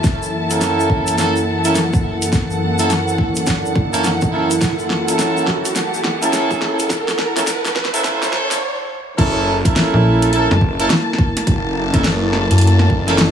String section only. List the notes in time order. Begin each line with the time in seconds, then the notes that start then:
Already playing: A#3 E4 E5 A5
0.35 F#5
9.18 E4
9.92 A#3
10.20 A5